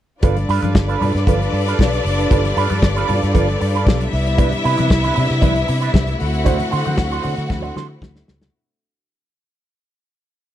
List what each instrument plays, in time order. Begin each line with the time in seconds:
0.21 fingered electric bass G1, string section G3 D4 F4 A4 B4 D5, clean electric guitar F4 A4 B4, kick, closed hi-hat, muted conga, low conga
0.37 muted clean electric guitar stroke, closed hi-hat, muted conga
0.49 fingered electric bass G2, clean electric guitar F4 A4 B4, open hi-hat
0.62 fingered electric bass G2, clean electric guitar F4 A4 B4, closed hi-hat, high conga
0.75 fingered electric bass G1, muted clean electric guitar stroke, kick, snare
0.88 clean electric guitar F4 A4 B4, closed hi-hat
1.01 fingered electric bass G2, clean electric guitar F4 A4 B4, open hi-hat, low conga
1.15 fingered electric bass G2, snare, closed hi-hat
1.27 fingered electric bass G1, clean electric guitar F4 A4 B4, kick, closed hi-hat, high conga
1.41 muted clean electric guitar stroke, closed hi-hat
1.53 fingered electric bass G2, muted clean electric guitar stroke, open hi-hat
1.67 clean electric guitar F4 A4 B4, closed hi-hat
1.79 fingered electric bass B1, kick, snare, muted conga, high conga
1.93 muted clean electric guitar stroke, closed hi-hat, muted conga
2.05 fingered electric bass F#1, open hi-hat
2.19 muted clean electric guitar stroke, closed hi-hat
2.31 fingered electric bass G1, clean electric guitar F4 A4 B4, kick, closed hi-hat, muted conga, low conga
2.44 muted clean electric guitar stroke, closed hi-hat, muted conga
2.57 fingered electric bass G2, clean electric guitar F4 A4 B4, open hi-hat
2.70 fingered electric bass G2, clean electric guitar F4 A4 B4, closed hi-hat, high conga
2.82 fingered electric bass G1, kick, snare, muted conga
2.96 clean electric guitar F4 A4 B4, closed hi-hat, muted conga
3.08 fingered electric bass G2, clean electric guitar F4 A4 B4, open hi-hat, low conga
3.22 fingered electric bass G2, snare, closed hi-hat
3.34 fingered electric bass G1, clean electric guitar F4 A4 B4, kick, closed hi-hat, muted conga, high conga
3.48 muted clean electric guitar stroke, closed hi-hat
3.61 fingered electric bass G2, muted clean electric guitar stroke, open hi-hat
3.75 clean electric guitar F4 A4 B4, closed hi-hat
3.87 fingered electric bass B1, muted clean electric guitar stroke, kick, snare, muted conga, high conga
4.00 muted clean electric guitar stroke, closed hi-hat
4.11 fingered electric bass C2, string section C3 B3 E4 E5, open hi-hat
4.26 muted clean electric guitar stroke, closed hi-hat
4.37 clean electric guitar D4 E4 B4, kick, closed hi-hat, muted conga, low conga
4.52 muted clean electric guitar stroke, closed hi-hat, muted conga
4.64 fingered electric bass C3, clean electric guitar D4 E4 B4, open hi-hat
4.77 fingered electric bass C3, clean electric guitar D4 E4 B4, closed hi-hat, high conga
4.90 fingered electric bass C2, muted clean electric guitar stroke, kick, snare
5.03 clean electric guitar D4 E4 B4, closed hi-hat, muted conga
5.15 fingered electric bass C3, clean electric guitar D4 E4 B4, open hi-hat, low conga
5.30 fingered electric bass C3, snare, closed hi-hat
5.41 fingered electric bass C2, clean electric guitar D4 E4 B4, kick, closed hi-hat, muted conga, high conga
5.55 muted clean electric guitar stroke, closed hi-hat
5.67 fingered electric bass C3, muted clean electric guitar stroke, open hi-hat
5.81 clean electric guitar D4 E4 B4, closed hi-hat
5.93 fingered electric bass C2, muted clean electric guitar stroke, kick, snare, muted conga, high conga
6.07 muted clean electric guitar stroke, closed hi-hat, muted conga
6.20 fingered electric bass D2, string section D3 A3 C4 F#4 F#5, open hi-hat
6.33 muted clean electric guitar stroke, closed hi-hat
6.44 clean electric guitar D4 F#4 C5, kick, closed hi-hat, muted conga, low conga
6.59 muted clean electric guitar stroke, closed hi-hat, muted conga
6.71 fingered electric bass D3, clean electric guitar D4 F#4 C5, open hi-hat
6.84 fingered electric bass D3, clean electric guitar D4 F#4 C5, closed hi-hat, high conga
6.97 fingered electric bass D2, muted clean electric guitar stroke, kick, snare
7.11 clean electric guitar D4 F#4 C5, closed hi-hat, muted conga
7.22 fingered electric bass D3, clean electric guitar D4 F#4 C5, open hi-hat, low conga
7.37 fingered electric bass D3, snare, closed hi-hat
7.49 fingered electric bass D2, muted clean electric guitar stroke, kick, snare, high conga
7.62 clean electric guitar D4 F#4 C5, muted conga
7.75 fingered electric bass D3, clean electric guitar D4 F#4 C5, snare, high conga
8.01 fingered electric bass D2, muted clean electric guitar stroke, kick, snare, high conga
8.16 muted clean electric guitar stroke, snare
8.28 fingered electric bass C#2, snare
8.41 snare, low conga